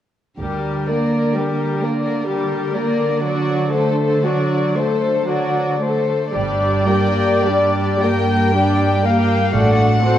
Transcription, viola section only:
0.39 0.85 G3 soft
0.88 1.36 A#3 soft
1.34 1.82 G3 soft
1.81 2.28 A#3 soft
2.28 2.72 G3 soft
2.76 3.24 A#3 soft
3.24 3.70 F#3 soft
3.74 4.24 A3 soft
4.24 4.76 F#3 soft
4.76 5.28 A3 soft
5.27 5.77 F#3 soft
5.81 6.34 A3 soft
6.34 6.83 G3 soft
6.34 6.83 D4 soft
6.87 7.44 A#3 soft
6.87 7.44 G4 soft
7.44 8.02 G3 soft
7.44 8.02 D4 soft
8.01 8.55 A#3 soft
8.01 8.55 G4 soft
8.54 9.02 G3 soft
8.54 9.02 D4 soft
9.07 9.56 A#3 soft
9.07 9.56 G4 soft
9.56 10.01 A3 soft
9.56 10.01 D4 soft
10.05 10.19 C4 soft
10.05 10.19 F#4 soft

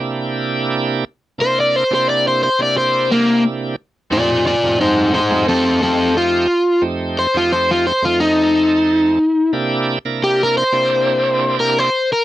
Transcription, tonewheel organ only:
0.00 1.04 C3 medium
0.00 1.04 A#3 medium
0.00 1.04 D4 medium
0.00 1.05 E4 medium
0.00 1.05 G4 medium
1.38 1.84 C3 medium
1.38 1.84 A#3 medium
1.38 1.84 D4 medium
1.38 1.84 E4 medium
1.38 1.84 A#4 medium
1.91 2.49 C3 medium
1.91 2.49 A#3 medium
1.91 2.50 D4 medium
1.91 2.50 E4 medium
1.91 2.50 G4 medium
2.59 3.76 C3 medium
2.59 3.76 A#3 medium
2.59 3.76 D4 medium
2.59 3.76 E4 medium
2.59 3.76 G4 medium
4.10 4.56 F2 medium
4.10 4.56 A3 medium
4.10 4.56 C4 medium
4.10 4.56 D#4 medium
4.10 4.56 G4 medium
4.63 5.21 F2 medium
4.63 5.21 A3 medium
4.63 5.21 C4 medium
4.63 5.22 D#4 medium
4.63 5.22 G4 medium
5.31 6.47 F2 medium
5.31 6.47 A3 medium
5.31 6.47 C4 medium
5.31 6.48 D#4 medium
5.31 6.48 G4 medium
6.82 7.27 F2 medium
6.82 7.27 A3 medium
6.82 7.27 C4 medium
6.82 7.27 D#4 medium
6.82 7.27 G4 medium
7.34 7.93 F2 medium
7.34 7.93 A3 medium
7.34 7.93 C4 medium
7.34 7.93 D#4 medium
7.34 7.93 G4 medium
8.02 9.19 F2 medium
8.02 9.19 A3 medium
8.02 9.19 C4 medium
8.02 9.19 D#4 medium
8.02 9.19 A4 medium
9.53 9.98 C3 medium
9.53 9.99 A#3 medium
9.53 9.99 D4 medium
9.53 9.99 E4 medium
9.53 9.99 G4 medium
10.05 10.64 C3 medium
10.05 10.64 A#3 medium
10.05 10.64 D4 medium
10.05 10.64 E4 medium
10.05 10.64 A#4 medium
10.72 11.90 C3 medium
10.72 11.90 A#3 medium
10.72 11.90 D4 medium
10.72 11.90 E4 medium
10.72 11.90 G4 medium

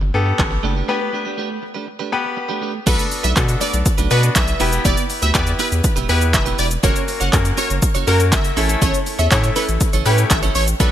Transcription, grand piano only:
0.14 0.69 B3 medium
0.14 0.69 G4 medium
0.14 0.70 A4 medium
0.88 1.62 B3 medium
0.88 1.62 G4 medium
0.88 1.62 B4 loud
2.12 2.68 B3 medium
2.12 2.68 G4 medium
2.12 2.68 B4 loud
2.86 3.24 B3 medium
2.86 3.24 D4 medium
2.86 3.24 F#4 medium
2.86 3.24 A4 medium
3.36 3.92 B3 medium
3.36 3.92 D4 medium
3.36 3.92 F#4 medium
3.36 3.92 A4 medium
4.11 4.59 B3 medium
4.11 4.60 D4 medium
4.11 4.61 F#4 medium
4.11 4.59 B4 medium
4.60 5.20 B3 medium
4.60 5.20 E4 medium
4.60 5.20 G4 medium
4.60 5.20 B4 medium
5.35 5.90 B3 medium
5.35 5.90 E4 medium
5.35 5.90 G4 medium
5.35 5.90 B4 medium
6.09 6.64 B3 medium
6.09 6.64 E4 medium
6.09 6.65 G4 medium
6.09 6.65 B4 medium
6.83 7.20 A#3 medium
6.83 7.20 C#4 medium
6.83 7.20 F#4 medium
6.83 7.21 A#4 medium
7.33 7.88 A#3 medium
7.33 7.88 C#4 medium
7.33 7.88 F#4 medium
7.33 7.89 A#4 medium
8.07 8.57 A#3 medium
8.07 8.55 C#4 medium
8.07 8.57 F#4 medium
8.07 8.57 A#4 medium
8.57 9.16 A3 medium
8.57 9.16 C#4 medium
8.57 9.17 E4 medium
8.57 9.17 A4 loud
9.31 9.87 A3 medium
9.31 9.87 C#4 medium
9.31 9.87 E4 medium
9.31 9.87 A4 medium
10.05 10.61 A3 medium
10.05 10.61 C#4 medium
10.05 10.61 E4 medium
10.05 10.61 G4 medium
10.80 10.92 B3 medium
10.80 10.92 D4 medium
10.80 10.92 F#4 medium
10.80 10.92 A4 medium

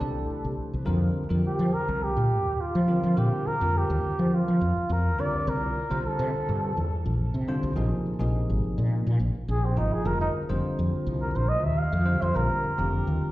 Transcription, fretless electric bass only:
0.01 0.23 C2 medium
0.30 muted fretless electric bass stroke soft
0.44 0.55 C2 medium
0.73 0.84 C2 medium
0.87 1.09 F2 medium
1.30 1.41 F2 medium
1.59 1.70 F3 medium
1.73 muted fretless electric bass stroke soft
1.88 2.11 C2 medium
2.16 2.46 A#2 medium
2.46 2.68 D#2 medium
2.75 2.97 F3 medium
3.03 3.14 F3 medium
3.17 3.29 A#2 medium
3.47 muted fretless electric bass stroke soft
3.61 3.84 F2 medium
3.90 4.00 D#2 medium
4.04 muted fretless electric bass stroke soft
4.19 4.41 F3 medium
4.48 4.58 F3 medium
4.61 4.73 F2 medium
4.77 muted fretless electric bass stroke soft
4.89 5.19 F2 medium
5.19 5.30 C2 medium
5.47 5.70 C2 medium
5.91 6.02 C2 medium
6.19 6.30 C3 medium
6.34 muted fretless electric bass stroke soft
6.49 6.71 G2 medium
6.77 7.07 E2 medium
7.05 7.28 A#1 medium
7.34 7.57 C3 medium
7.63 7.74 C2 medium
7.77 7.88 A#1 medium
8.06 muted fretless electric bass stroke soft
8.20 8.43 A#1 medium
8.49 8.60 G#1 medium
8.63 muted fretless electric bass stroke soft
8.78 9.00 A#2 medium
9.06 9.17 A#2 medium
9.19 9.31 A#1 medium
9.34 muted fretless electric bass stroke soft
9.48 9.78 A#1 medium
9.77 9.89 G#1 medium
10.05 10.28 F1 medium
10.49 10.60 F1 medium
10.79 10.89 F2 medium
10.92 muted fretless electric bass stroke soft
11.06 11.29 C2 medium
11.35 11.64 A#1 medium
11.64 11.86 D#2 medium
11.92 12.15 F2 medium
12.22 12.32 F2 medium
12.35 12.47 A#1 medium
12.64 muted fretless electric bass stroke soft
12.79 13.01 F1 medium
13.07 13.18 D#2 medium
13.21 muted fretless electric bass stroke soft

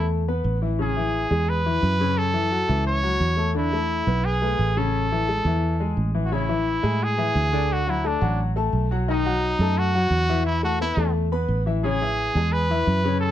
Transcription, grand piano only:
0.00 0.21 A3 medium
0.00 0.22 A4 medium
0.28 0.56 B3 medium
0.28 0.56 B4 medium
0.62 0.76 E3 medium
0.62 0.76 E4 medium
0.79 0.93 C#3 medium
0.79 0.93 C#4 medium
0.97 1.25 E3 medium
0.97 1.25 E4 medium
1.31 1.59 G#3 medium
1.31 1.59 G#4 medium
1.66 1.94 E3 medium
1.66 1.94 E4 medium
2.00 2.28 C#3 medium
2.00 2.29 C#4 medium
2.33 2.48 E3 medium
2.33 2.48 E4 medium
2.51 2.66 F#3 medium
2.51 2.66 F#4 medium
2.68 2.97 E3 medium
2.68 2.97 E4 medium
3.03 3.32 F#3 medium
3.03 3.32 F#4 medium
3.37 3.51 A3 medium
3.37 3.52 A4 medium
3.55 3.69 D3 medium
3.55 3.69 D4 medium
3.73 4.01 A3 medium
3.73 4.01 A4 medium
4.07 4.35 B3 medium
4.07 4.36 B4 medium
4.42 4.70 A3 medium
4.42 4.70 B4 medium
4.77 5.05 C#3 medium
4.77 5.05 C#4 medium
5.12 5.25 E3 medium
5.12 5.26 E4 medium
5.28 5.42 G#3 medium
5.28 5.42 G#4 medium
5.46 5.74 E3 medium
5.46 5.75 E4 medium
5.80 6.08 G#3 medium
5.80 6.09 G#4 medium
6.14 6.29 E3 medium
6.14 6.29 E4 medium
6.32 6.46 C#3 medium
6.32 6.46 C#4 medium
6.32 6.46 C#5 medium
6.49 6.77 E3 medium
6.49 6.77 E4 medium
6.49 6.77 E5 medium
6.83 7.11 G#3 medium
6.83 7.12 G#4 medium
6.83 7.12 G#5 medium
7.18 7.46 E3 medium
7.18 7.46 E4 medium
7.18 7.47 E5 medium
7.53 7.81 D3 medium
7.53 7.81 D4 medium
7.53 7.81 D5 medium
7.87 8.01 F#3 medium
7.87 8.01 F#4 medium
7.87 8.01 F#5 medium
8.04 8.18 A3 medium
8.04 8.18 A4 medium
8.04 8.19 A5 medium
8.21 8.50 F#3 medium
8.21 8.50 F#4 medium
8.21 8.50 F#5 medium
8.56 8.84 A3 medium
8.56 8.85 A4 medium
8.56 8.85 A5 medium
8.91 9.05 F#3 medium
8.91 9.05 F#4 medium
8.91 9.06 F#5 medium
9.08 9.22 D#3 medium
9.08 9.22 D#4 medium
9.08 9.22 D#5 medium
9.25 9.54 F#3 medium
9.25 9.54 F#4 medium
9.25 9.54 F#5 medium
9.61 9.88 A3 medium
9.61 9.89 A4 medium
9.61 9.89 A5 medium
9.94 10.22 F#3 medium
9.94 10.23 F#4 medium
9.94 10.23 F#5 medium
10.29 10.57 E3 medium
10.29 10.57 E4 medium
10.29 10.57 E5 medium
10.63 10.77 A3 medium
10.63 10.77 A4 medium
10.63 10.78 A5 medium
10.81 10.95 B3 medium
10.81 10.95 B4 medium
10.81 10.95 B5 medium
10.97 11.26 A3 medium
10.97 11.26 A4 medium
10.97 11.26 A5 medium
11.32 11.60 B3 medium
11.32 11.60 B4 medium
11.32 11.60 B5 medium
11.66 11.80 E3 medium
11.66 11.80 E4 medium
11.66 11.81 E5 medium
11.84 11.98 C#3 medium
11.84 11.98 C#4 medium
11.84 11.98 C#5 medium
12.02 12.30 E3 medium
12.02 12.30 E4 medium
12.02 12.30 E5 medium
12.36 12.64 G#3 medium
12.36 12.64 G#4 medium
12.36 12.64 G#5 medium
12.70 12.98 E3 medium
12.70 12.98 E4 medium
12.70 12.99 E5 medium
13.04 13.31 C#3 medium
13.04 13.31 C#4 medium
13.04 13.31 C#5 medium

